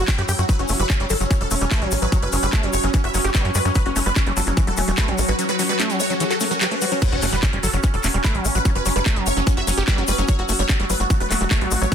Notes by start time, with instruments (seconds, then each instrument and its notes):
Already playing: synth drone F#3 E4, ambient pad F#4 C#5 F#5
0.08 acid bass C#4, supersaw synth G5, kick, clap, closed hi-hat, shaker
0.18 analog synth bass F#2, supersaw synth F#4, acid bass G4, closed hi-hat
0.28 analog synth bass F#2, acid bass G4, supersaw synth G5, open hi-hat, shaker
0.39 analog synth bass F#2, supersaw synth F#4, acid bass F#4, closed hi-hat, shaker
0.49 acid bass F#3, synth drone C#4, supersaw synth B4, kick, closed hi-hat, shaker
0.59 analog synth bass F#1, supersaw synth C#4, acid bass F#4, closed hi-hat
0.68 analog synth bass F#1, acid bass A3, supersaw synth C#4, open hi-hat, shaker
0.76 analog synth bass F#1, acid bass G3, supersaw synth B4, ambient pad B5, closed hi-hat
0.80 shaker
0.90 supersaw synth C#4, acid bass C#4, kick, clap, closed hi-hat, shaker
1.00 analog synth bass F#1, acid bass G3, supersaw synth C#4, closed hi-hat
1.10 analog synth bass G1, acid bass F#3, supersaw synth A4, open hi-hat, shaker
1.20 analog synth bass F#1, acid bass F#3, supersaw synth C#4, closed hi-hat, shaker
1.31 acid bass E3, supersaw synth C#4, kick, closed hi-hat, shaker
1.41 analog synth bass E1, acid bass G3, supersaw synth A4, closed hi-hat
1.51 analog synth bass E1, acid bass A3, supersaw synth C#4, open hi-hat, shaker
1.61 analog synth bass E1, acid bass G3, supersaw synth C#4, closed hi-hat, shaker
1.71 acid bass A3, supersaw synth B4, kick, clap, closed hi-hat, shaker
1.82 analog synth bass A1, acid bass F#3, supersaw synth C#4, closed hi-hat
1.91 analog synth bass A1, acid bass C#4, supersaw synth C#4, open hi-hat, shaker
2.02 analog synth bass A1, acid bass F#3, supersaw synth B4, closed hi-hat, shaker
2.12 acid bass F#3, supersaw synth C#4, kick, closed hi-hat, shaker
2.22 analog synth bass F#1, acid bass G3, supersaw synth B4, closed hi-hat
2.32 analog synth bass F#1, acid bass F#3, supersaw synth C#4, open hi-hat, shaker
2.42 analog synth bass F#1, acid bass G3, supersaw synth B4, closed hi-hat, shaker
2.53 acid bass A3, supersaw synth C#4, kick, clap, closed hi-hat, shaker
2.63 analog synth bass F#1, acid bass F#3, supersaw synth C#4, closed hi-hat
2.73 analog synth bass F#1, acid bass C#4, supersaw synth C#5, open hi-hat, shaker
2.83 analog synth bass F#1, acid bass F#3, supersaw synth C#4, closed hi-hat, shaker
2.94 acid bass E3, supersaw synth C#4, kick, closed hi-hat, shaker
3.04 analog synth bass F#1, acid bass F#4, supersaw synth E5, closed hi-hat
3.14 analog synth bass F#1, acid bass F#3, supersaw synth C#4, open hi-hat, shaker
3.24 analog synth bass F#1, supersaw synth C#4, acid bass G4, closed hi-hat, shaker
3.35 acid bass G3, supersaw synth B4, kick, clap, closed hi-hat, shaker
3.45 analog synth bass F#2, acid bass F#3, supersaw synth C#4, closed hi-hat
3.55 analog synth bass F#2, acid bass G3, supersaw synth B4, open hi-hat, shaker
3.65 analog synth bass F#2, acid bass F#3, supersaw synth C#4, closed hi-hat, shaker
3.75 acid bass F#3, synth drone F#4, supersaw synth B4, kick, closed hi-hat, riser, shaker
3.86 analog synth bass F#1, supersaw synth C#4, acid bass F#4, closed hi-hat
3.96 analog synth bass F#1, acid bass A3, supersaw synth C#4, open hi-hat, shaker
4.06 analog synth bass F#1, acid bass G3, supersaw synth B4, closed hi-hat, shaker
4.16 supersaw synth C#4, acid bass C#4, kick, clap, closed hi-hat, shaker
4.26 analog synth bass F#1, acid bass G3, supersaw synth C#4, closed hi-hat
4.37 analog synth bass G1, acid bass F#3, supersaw synth A4, open hi-hat, shaker
4.47 analog synth bass F#1, acid bass F#3, supersaw synth C#4, closed hi-hat, shaker
4.57 acid bass E3, supersaw synth C#4, kick, closed hi-hat, shaker
4.67 analog synth bass E1, acid bass G3, supersaw synth A4, closed hi-hat
4.77 analog synth bass E1, acid bass A3, supersaw synth C#4, open hi-hat, shaker
4.88 analog synth bass E1, acid bass G3, supersaw synth C#4, closed hi-hat, shaker
4.97 acid bass A3, supersaw synth B4, kick, clap, closed hi-hat, shaker
5.08 analog synth bass A1, acid bass F#3, supersaw synth C#4, closed hi-hat
5.18 analog synth bass A1, supersaw synth C#4, acid bass C#4, open hi-hat, shaker
5.28 analog synth bass A1, acid bass F#3, supersaw synth B4, closed hi-hat, shaker
5.39 acid bass F#3, supersaw synth C#4, closed hi-hat, shaker
5.49 acid bass G3, supersaw synth B4, closed hi-hat, shaker
5.59 acid bass F#3, supersaw synth C#4, open hi-hat, shaker
5.69 acid bass G3, supersaw synth B4, closed hi-hat, shaker
5.79 acid bass A3, supersaw synth C#4, clap, closed hi-hat, shaker
5.90 acid bass F#3, supersaw synth C#4, closed hi-hat, shaker
6.00 acid bass C#4, supersaw synth C#5, open hi-hat, shaker
6.10 acid bass F#3, supersaw synth C#4, closed hi-hat, shaker
6.20 acid bass E3, supersaw synth C#4, closed hi-hat, shaker
6.30 acid bass F#4, supersaw synth A4, clap, closed hi-hat, shaker
6.40 acid bass A3, supersaw synth C#4, open hi-hat, shaker
6.51 acid bass F#3, supersaw synth C#4, closed hi-hat, shaker
6.61 acid bass F#3, supersaw synth G4, clap, closed hi-hat, shaker
6.71 acid bass A3, supersaw synth C#4, closed hi-hat
6.82 acid bass G3, supersaw synth F#4, open hi-hat, shaker
6.91 acid bass F#3, supersaw synth C#4, closed hi-hat, shaker
7.02 synth drone F#3 C#4, acid bass F#3, ambient pad F#4, supersaw synth B4, kick, closed hi-hat, crash, impact, shaker
7.12 analog synth bass F#1, supersaw synth C#4, acid bass F#4, closed hi-hat
7.22 analog synth bass F#1, acid bass A3, supersaw synth C#4, open hi-hat, shaker
7.30 analog synth bass F#1, acid bass G3, supersaw synth B4, ambient pad C#5 F#5, closed hi-hat, shaker
7.43 acid bass C#4, supersaw synth C#4, kick, clap, closed hi-hat, shaker
7.53 analog synth bass F#1, acid bass G3, supersaw synth C#4, closed hi-hat
7.63 analog synth bass G1, acid bass F#3, supersaw synth A4, open hi-hat, shaker
7.73 analog synth bass F#1, acid bass F#3, supersaw synth C#4, closed hi-hat, shaker
7.83 acid bass E3, supersaw synth C#4, kick, closed hi-hat, shaker
7.94 analog synth bass E1, acid bass G3, supersaw synth A4, closed hi-hat
8.03 analog synth bass E1, acid bass A3, supersaw synth C#4, clap, open hi-hat, shaker
8.14 analog synth bass E1, acid bass G3, supersaw synth C#4, closed hi-hat, shaker
8.24 acid bass A3, supersaw synth B4, kick, clap, closed hi-hat, shaker
8.35 analog synth bass A1, acid bass F#3, supersaw synth C#4, closed hi-hat
8.45 analog synth bass A1, supersaw synth C#4, acid bass C#4, open hi-hat, shaker
8.55 analog synth bass A1, acid bass F#3, supersaw synth B4, closed hi-hat, shaker
8.65 acid bass F#3, supersaw synth C#4, kick, closed hi-hat, shaker
8.75 analog synth bass F#1, acid bass G3, supersaw synth B4, closed hi-hat
8.86 analog synth bass F#1, acid bass F#3, supersaw synth C#4, open hi-hat, shaker
8.96 analog synth bass F#1, acid bass G3, supersaw synth B4, closed hi-hat, shaker
9.06 acid bass A3, supersaw synth C#4, kick, clap, closed hi-hat, shaker
9.16 analog synth bass F#1, acid bass F#3, supersaw synth C#4, closed hi-hat
9.26 analog synth bass F#1, acid bass C#4, supersaw synth C#5, open hi-hat, shaker
9.37 analog synth bass F#1, acid bass F#3, supersaw synth C#4, closed hi-hat, shaker
9.47 acid bass E3, supersaw synth C#4, kick, closed hi-hat, shaker
9.57 analog synth bass F#1, acid bass F#4, supersaw synth E5, closed hi-hat
9.67 analog synth bass F#1, acid bass F#3, supersaw synth C#4, open hi-hat, shaker
9.77 analog synth bass F#1, supersaw synth C#4, acid bass G4, closed hi-hat, shaker
9.88 acid bass G3, supersaw synth B4, kick, clap, closed hi-hat, shaker
9.98 analog synth bass F#1, acid bass F#3, supersaw synth C#4, closed hi-hat
10.08 analog synth bass F#1, acid bass G3, supersaw synth B4, open hi-hat, shaker
10.18 analog synth bass F#1, acid bass F#3, supersaw synth C#4, closed hi-hat, shaker
10.28 acid bass F#3, synth drone A3, supersaw synth C#5, kick, closed hi-hat, shaker
10.39 analog synth bass F#1, supersaw synth F#4, acid bass F#4, closed hi-hat
10.49 analog synth bass F#1, acid bass A3, supersaw synth F#4, open hi-hat, shaker
10.59 analog synth bass F#1, acid bass G3, supersaw synth C#5, closed hi-hat, shaker
10.69 acid bass C#4, supersaw synth F#4, kick, clap, closed hi-hat, shaker
10.80 analog synth bass F#1, acid bass G3, supersaw synth F#4, closed hi-hat
10.90 analog synth bass G1, acid bass F#3, supersaw synth B4, open hi-hat, shaker
11.00 analog synth bass F#1, acid bass F#3, supersaw synth F#4, closed hi-hat, shaker
11.10 acid bass E3, supersaw synth F#4, kick, closed hi-hat, shaker
11.20 analog synth bass E1, acid bass G3, supersaw synth B4, closed hi-hat
11.31 analog synth bass E1, acid bass A3, supersaw synth F#4, clap, open hi-hat, shaker
11.41 analog synth bass E1, acid bass G3, supersaw synth F#4, closed hi-hat, shaker
11.51 acid bass A3, supersaw synth C#5, kick, clap, closed hi-hat, shaker
11.61 analog synth bass A1, acid bass F#3, supersaw synth F#4, closed hi-hat
11.71 analog synth bass A1, acid bass C#4, supersaw synth F#4, open hi-hat, shaker
11.82 analog synth bass A1, acid bass F#3, supersaw synth C#5, closed hi-hat, shaker
11.92 kick